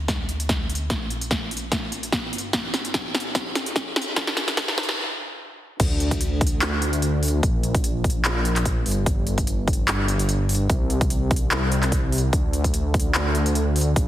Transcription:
Already playing: detuned saw bass D2
0.08 kick, snare, closed hi-hat
0.29 closed hi-hat
0.40 closed hi-hat
0.49 kick, snare, closed hi-hat
0.70 closed hi-hat
0.75 closed hi-hat
0.90 detuned saw bass A#1, kick, snare, closed hi-hat
1.10 closed hi-hat
1.21 closed hi-hat
1.31 kick, snare, closed hi-hat
1.51 closed hi-hat
1.57 closed hi-hat
1.72 kick, snare, closed hi-hat
1.92 closed hi-hat
2.03 closed hi-hat
2.12 kick, snare, closed hi-hat
2.33 detuned saw bass G1, closed hi-hat
2.38 closed hi-hat
2.53 kick, snare, closed hi-hat
2.74 snare, closed hi-hat
2.85 closed hi-hat
2.94 kick, snare, closed hi-hat
3.15 snare, closed hi-hat
3.20 closed hi-hat
3.35 kick, snare, closed hi-hat
3.55 snare, closed hi-hat
3.66 closed hi-hat
3.76 kick, snare, closed hi-hat
3.96 snare, closed hi-hat
4.02 closed hi-hat
4.16 detuned saw bass C2, kick, snare, closed hi-hat
4.27 snare
4.37 snare, closed hi-hat
4.48 snare, closed hi-hat
4.57 kick, snare, closed hi-hat
4.68 snare
4.78 snare, closed hi-hat
4.83 closed hi-hat
4.89 snare
5.80 detuned saw bass D2, kick, closed hi-hat, crash
6.00 closed hi-hat
6.11 kick, closed hi-hat
6.21 closed hi-hat
6.41 kick, closed hi-hat
6.47 closed hi-hat
6.61 clap, closed hi-hat
6.82 closed hi-hat
6.93 closed hi-hat
7.02 closed hi-hat
7.23 open hi-hat
7.28 closed hi-hat
7.43 detuned saw bass A#1, kick, closed hi-hat
7.63 closed hi-hat
7.75 kick, closed hi-hat
7.84 closed hi-hat
8.04 kick, closed hi-hat
8.10 closed hi-hat
8.25 clap, closed hi-hat
8.45 closed hi-hat
8.56 clap, closed hi-hat
8.65 kick, closed hi-hat
8.86 detuned saw bass G1, open hi-hat
8.91 closed hi-hat
9.06 kick, closed hi-hat
9.27 closed hi-hat
9.38 kick, closed hi-hat
9.47 closed hi-hat
9.68 kick, closed hi-hat
9.73 closed hi-hat
9.88 clap, closed hi-hat
10.08 closed hi-hat
10.19 closed hi-hat
10.29 closed hi-hat
10.49 open hi-hat
10.55 closed hi-hat
10.70 detuned saw bass C2, kick, closed hi-hat
10.90 closed hi-hat
11.01 kick, closed hi-hat
11.10 closed hi-hat
11.31 kick, closed hi-hat
11.36 closed hi-hat
11.51 clap, closed hi-hat
11.72 closed hi-hat
11.83 clap, closed hi-hat
11.92 kick, closed hi-hat
12.12 open hi-hat
12.18 closed hi-hat
12.33 detuned saw bass D2, kick, closed hi-hat
12.53 closed hi-hat
12.64 kick, closed hi-hat
12.74 closed hi-hat
12.94 kick, closed hi-hat
13.00 closed hi-hat
13.15 clap, closed hi-hat
13.35 closed hi-hat
13.46 closed hi-hat
13.55 closed hi-hat
13.76 open hi-hat
13.81 closed hi-hat
13.96 detuned saw bass A#1, kick, closed hi-hat

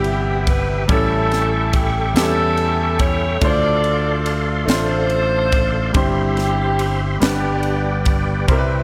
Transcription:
Already playing: fingered electric bass G1, grand piano C3 G3 C4 E4 G4 B4, saxophone section B3 E4 G4, tonewheel organ G4 E5 G5
0.04 ride
0.47 saxophone section B4, kick, ride
0.88 fingered electric bass A1, grand piano A2 G3 C#4 E4 A4, tonewheel organ A4 G5 C#6, saxophone section A4, kick, ride
0.92 saxophone section C#4 E4
1.32 snare, ride
1.73 saxophone section G4, kick, ride
2.14 fingered electric bass E2, grand piano G3 B3 E4, saxophone section A4, snare, ride
2.18 saxophone section C#4 E4, grand piano C#4 G4
2.57 ride
2.99 saxophone section C#5, kick, ride
3.41 fingered electric bass D2, grand piano D3 A3 D4 F4 C5, tonewheel organ D5 F5 C6, saxophone section D5, kick, ride
3.46 saxophone section F4 A4
3.84 ride
4.26 ride
4.66 fingered electric bass A1, grand piano A3 D4 F4, saxophone section C5, ride
4.70 saxophone section F4 A4, grand piano C5, snare
5.10 ride
5.52 kick, ride
5.93 fingered electric bass G1, grand piano G2 G3 C4 E4 C5, saxophone section E4 G4, tonewheel organ G4 C5 E5, kick, ride
5.97 saxophone section C4
6.37 snare, ride
6.79 ride
7.20 fingered electric bass G1, grand piano G2 G3 B3 D4, tonewheel organ G4 B4 D5 G5, snare, ride
7.24 saxophone section B3 D4 G4, grand piano B4
7.63 ride
8.05 kick, ride
8.48 fingered electric bass C2, grand piano C3 G3 C4 E4 A#4, tonewheel organ E5, kick, ride
8.58 grand piano B4

